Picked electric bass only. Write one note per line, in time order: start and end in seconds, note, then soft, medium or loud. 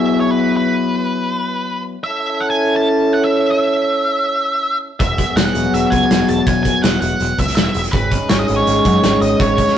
5.00 5.24 E1 medium
5.36 5.49 E1 medium
5.55 5.67 E1 medium
5.73 5.85 E1 medium
5.92 6.04 C#2 medium
6.11 6.23 E1 medium
6.29 6.41 E1 medium
6.47 6.71 E1 loud
6.84 6.96 E1 medium
7.02 7.14 E1 medium
7.20 7.32 E1 medium
7.39 7.51 C#2 medium
7.57 7.69 E1 medium
7.75 7.87 E1 medium
7.93 8.17 G#1 loud
8.31 8.42 G#1 medium
8.50 8.61 G#1 medium
8.67 8.79 G#1 medium
8.85 8.97 F#2 medium
9.03 9.15 G#1 medium
9.21 9.33 G#1 medium
9.40 9.64 G#1 medium